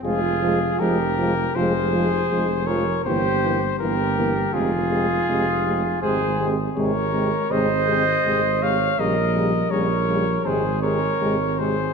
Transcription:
X:1
M:4/4
L:1/8
Q:1/4=81
K:Fm
V:1 name="Trumpet"
A2 B2 c3 d | c2 B2 A4 | c z d2 e3 f | e2 d2 c d2 c |]
V:2 name="Flugelhorn"
F2 G2 A3 B | G2 G2 F4 | A z B2 c3 d | B2 B2 A B2 A |]
V:3 name="French horn" clef=bass
A, A, A, A, A, A, A, A, | B, B, B, B, A, A, A, A, | A, A, A, A, A, A, A, A, | G, G, G, G, A, A, A, A, |]
V:4 name="Euphonium" clef=bass
F, F, F, F, F, F, F, F, | =E, E, E, E, C, C, C, C, | C, C, C, C, C, C, C, C, | D, D, D, D, C, C, C, C, |]
V:5 name="Tuba" clef=bass
F,,,2 F,,,2 F,,,2 F,,,2 | G,,,2 G,,,2 F,,,2 F,,,2 | A,,,2 A,,,2 A,,,2 A,,,2 | B,,,2 B,,,2 A,,,2 A,,,2 |]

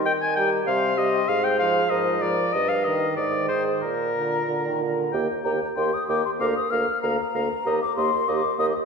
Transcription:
X:1
M:2/4
L:1/16
Q:1/4=96
K:Eb
V:1 name="Flute"
z2 b2 c'2 c'2 | z2 c'2 b2 b2 | z2 b2 e'2 e'2 | z2 b4 b2 |
z2 b2 c' e' d' c' | d' e' f'2 b4- | b d' c'2 d'2 e'2 |]
V:2 name="Oboe"
g a g2 f2 e2 | f g f2 e2 d2 | e f e2 d2 c2 | B6 z2 |
g2 g2 g2 g2 | f2 f2 f2 f2 | e2 e2 e2 e2 |]
V:3 name="Clarinet"
z2 G2 G2 G2 | z2 A2 B2 B2 | z2 B2 A2 A2 | z2 F4 F2 |
G2 G2 G2 G2 | B2 B2 B2 B2 | G2 G2 G2 G2 |]
V:4 name="French horn" clef=bass
z2 G,2 G,2 G,2 | z2 F,2 F,2 F,2 | z2 E,2 E,2 E,2 | z2 D,2 D, E, D,2 |
B,2 B,2 B,2 B,2 | B,2 B,2 B,2 B,2 | B,2 B,2 B,2 B,2 |]
V:5 name="Bassoon" clef=bass
E,4 C,4 | A,,4 A,,4 | G,,4 A,,4 | B,,4 B,,4 |
E,,2 E,,2 E,,2 E,,2 | D,,2 D,,2 D,,2 D,,2 | E,,2 E,,2 E,,2 E,,2 |]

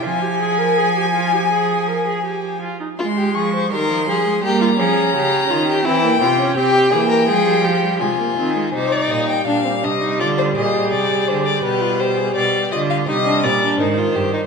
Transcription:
X:1
M:4/4
L:1/16
Q:1/4=83
K:Fm
V:1 name="Violin"
a12- a2 z2 | c'2 d'2 c'4 b8 | g4 g8 a4 | [K:Cm] c d e g f2 e2 d c e2 d2 c d |
=B2 c2 d2 e f e2 d2 c4 |]
V:2 name="Violin"
a12- a2 z2 | F G A c B2 A2 G F A2 G2 F G | =E2 F2 G2 A B A2 G2 F4 | [K:Cm] E4 D C D E F2 A6 |
G F G A G2 F2 E D C D E F G E |]
V:3 name="Viola"
F G A B A G F G A2 B A G2 F E | A,4 G, F, G, A, B,2 D6 | C B, C D C2 B,2 A, G, F, G, A, B, C A, | [K:Cm] G,16- |
G,8 G,4 E,4 |]
V:4 name="Cello" clef=bass
F,12- F,2 z2 | A,2 F,2 E,2 F,2 G,2 F,2 D,2 E,2 | =E,2 C,2 C,2 E,2 F,4 C,2 _E,2 | [K:Cm] C,2 B,,2 B,,2 C,2 D,2 B,,2 C,2 D,2 |
=B,,4 B,,2 D,2 C,2 _B,,2 A,,2 G,,2 |]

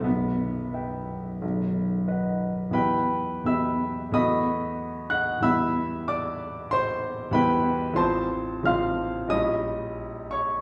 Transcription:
X:1
M:4/4
L:1/8
Q:1/4=91
K:Em
V:1 name="Grand piano"
B,6 z2 | [Bgb]2 [ebe']2 [^db^d']3 [ff'] | [ebe']2 [dd']2 [cc']2 [Bgb]2 | [cac']2 [=fc'=f']2 [^d^d']3 [^c^c'] |]
V:2 name="Grand piano"
[B,,,,B,,,]2 [Beg]2 [B,,,,B,,,]2 [B^df]2 | [E,,B,EG]2 [E,,B,EG]2 [E,,A,B,F]4 | [E,,G,B,E]6 [E,,G,B,E]2 | [A,,,=F,C=F]2 [A,,,F,CF]2 [^A,,,G,^CE]4 |]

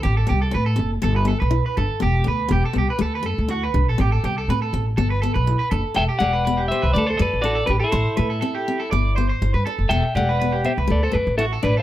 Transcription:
X:1
M:4/4
L:1/16
Q:1/4=122
K:Em
V:1 name="Clean electric guitar"
z16 | z16 | z16 | [eg]2 [df]4 [ce]2 [Ad] [Ac] [Bd]2 [Ad]2 [GB] [EA]- |
[EA]8- [EA]3 z4 z | [eg]2 [df]4 [ce]2 [Ad] [Ac] [Bd]2 [Ae]2 [Bd] c |]
V:2 name="Clean electric guitar"
G A G A B A2 z A B A B2 B A2 | G2 B2 G A G B A B A2 F B2 A | G A G A B A2 z A B A B2 B A2 | A G G B B G2 B2 A A2 F A B A |
c2 B A A G2 A d2 c c2 B A2 | A z G B B G2 B2 A z2 F A B A |]
V:3 name="Steel-string acoustic guitar"
C2 B,2 C2 C2 B,2 B,2 E2 D2 | B,2 A,2 B,2 B,2 A,2 A,2 E2 D2 | C2 B,2 C2 C2 B,2 B,2 E2 D2 | B,2 A,2 B,2 B,2 A,2 A,2 E2 D2 |
z2 A,2 C2 C2 B,2 B,2 E2 D2 | B,2 A,2 B,2 B,2 A,2 A,2 E2 D2 |]
V:4 name="Upright bass" clef=bass
A,,,2 C,,2 A,,2 F,,,2 G,,,3 B,,,2 z G,,, z | E,,,2 D,,2 E,,, z C,, z D,,2 F,, D,,3 C,, ^A,,, | A,,,2 C,,2 A,,2 A,,,2 G,,,3 B,,,2 z F,,, z | E,,, z E,,,4- E,,, C,, D,,2 F,, A,,,3 A,,, z |
A,,, z A,,2 z4 G,,,4 G,,, G,, z F,,, | E,,, z E,,,4- E,,, C,, D,,2 F,, A,,,3 A,,, z |]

